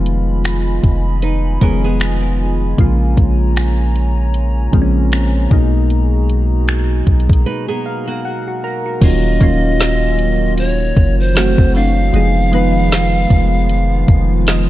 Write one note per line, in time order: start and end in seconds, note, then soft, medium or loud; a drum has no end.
0.00 0.80 F1 loud
0.00 0.73 D#3 medium
0.00 0.74 F3 medium
0.00 0.74 G#3 medium
0.00 0.75 B3 medium
0.00 0.75 F4 medium
0.00 5.47 F4 medium
0.00 2.75 D#5 medium
0.00 8.98 G#5 medium
0.00 2.75 B5 medium
0.06 closed hi-hat medium
0.44 finger snap medium
0.44 closed hi-hat medium
0.83 1.58 F1 medium
0.83 kick medium
0.83 closed hi-hat medium
1.22 1.60 D#4 medium
1.22 1.60 B4 medium
1.22 closed hi-hat medium
1.61 2.74 F1 medium
1.61 2.40 D#3 medium
1.61 2.41 F3 medium
1.61 2.41 G#3 medium
1.61 2.41 B3 medium
1.61 1.83 C#4 medium
1.61 2.42 G#4 medium
1.61 1.83 A#4 medium
1.61 kick medium
1.61 closed hi-hat medium
1.84 2.75 B3 medium
1.84 2.74 G#4 medium
2.00 finger snap loud
2.00 closed hi-hat medium
2.77 3.16 A#1 loud
2.77 2.85 C3 medium
2.77 3.85 F3 medium
2.77 3.86 G#3 medium
2.77 3.86 A#3 medium
2.77 3.87 F4 medium
2.77 5.48 C#5 medium
2.77 7.03 A#5 medium
2.77 kick loud
2.77 closed hi-hat medium
2.84 3.88 C#3 medium
3.17 4.69 A#1 medium
3.17 kick medium
3.17 closed hi-hat medium
3.56 finger snap medium
3.56 closed hi-hat medium
3.96 closed hi-hat medium
4.34 closed hi-hat medium
4.72 5.48 A#1 medium
4.72 5.50 C#3 medium
4.72 5.51 F3 medium
4.72 5.50 G#3 medium
4.72 5.51 A#3 medium
4.72 4.82 C4 medium
4.72 kick medium
4.72 closed hi-hat medium
4.82 5.55 C#4 medium
5.12 finger snap loud
5.12 closed hi-hat medium
5.50 7.03 B1 loud
5.50 6.76 B2 medium
5.50 6.77 F#3 medium
5.50 6.77 G#3 medium
5.50 6.78 A#3 medium
5.50 6.78 D#4 medium
5.50 8.98 F#4 medium
5.50 8.98 G#4 medium
5.50 kick loud
5.90 closed hi-hat medium
6.29 closed hi-hat medium
6.68 finger snap medium
6.68 closed hi-hat medium
7.06 7.29 B1 medium
7.06 8.99 A#5 medium
7.06 kick medium
7.06 closed hi-hat medium
7.20 closed hi-hat medium
7.29 7.45 B1 loud
7.29 kick medium
7.29 closed hi-hat medium
7.46 7.68 D#4 medium
7.46 7.67 B4 medium
7.68 8.06 B3 medium
7.68 8.05 G#4 medium
7.86 8.22 F5 medium
8.08 8.98 A#3 medium
8.08 8.98 F#4 medium
8.25 8.61 F#5 medium
8.48 8.63 F#4 medium
8.64 8.85 A#4 medium
8.64 9.00 A#5 medium
8.86 9.23 F#4 medium
9.01 9.39 D#1 loud
9.01 9.30 D#3 medium
9.01 11.33 D#3 medium
9.01 11.33 F#3 medium
9.01 9.30 F#3 medium
9.01 11.33 A#3 medium
9.01 9.30 A#3 medium
9.01 11.33 C#4 medium
9.01 9.31 C#4 medium
9.01 11.33 F4 medium
9.01 9.31 F4 medium
9.01 10.54 D#5 loud
9.01 kick loud
9.01 closed hi-hat medium
9.01 crash medium
9.40 10.93 D#1 medium
9.40 10.47 D#3 medium
9.40 10.48 F#3 medium
9.40 10.48 A#3 medium
9.40 10.49 C#4 medium
9.40 10.49 F4 medium
9.40 kick medium
9.40 closed hi-hat medium
9.80 snare medium
9.80 closed hi-hat medium
10.19 closed hi-hat medium
10.58 11.15 C#5 loud
10.58 closed hi-hat medium
10.97 11.56 F#1 loud
10.97 kick medium
10.97 closed hi-hat medium
11.20 11.77 C5 loud
11.35 11.67 E3 medium
11.35 12.12 E3 medium
11.35 12.12 F#3 medium
11.35 11.68 F#3 medium
11.35 12.13 A3 medium
11.35 11.68 A3 medium
11.35 12.12 C4 medium
11.35 11.69 C4 medium
11.35 12.12 F#4 medium
11.35 11.69 F#4 medium
11.35 snare loud
11.35 closed hi-hat medium
11.58 12.11 F#1 loud
11.58 kick medium
11.74 12.03 E3 medium
11.74 12.03 F#3 medium
11.74 12.03 A3 medium
11.74 12.04 C4 medium
11.74 12.04 D4 medium
11.74 14.70 F5 loud
11.74 open hi-hat medium
12.13 13.26 F1 loud
12.13 14.70 D#3 medium
12.13 12.41 F3 medium
12.13 14.70 F3 medium
12.13 14.70 G#3 medium
12.13 12.42 G#3 medium
12.13 14.70 B3 medium
12.13 12.42 B3 medium
12.13 12.43 D#4 medium
12.13 14.70 F4 medium
12.13 12.43 G#4 medium
12.13 closed hi-hat medium
12.52 13.59 F3 medium
12.52 13.59 G#3 medium
12.52 13.60 B3 medium
12.52 13.60 D#4 medium
12.52 13.61 B4 medium
12.52 closed hi-hat medium
12.92 snare loud
12.92 closed hi-hat medium
13.30 14.05 F1 loud
13.30 kick medium
13.30 closed hi-hat medium
13.69 closed hi-hat medium
14.08 14.70 F1 loud
14.08 kick loud
14.08 closed hi-hat medium
14.47 14.69 D#5 medium
14.47 snare loud
14.47 closed hi-hat medium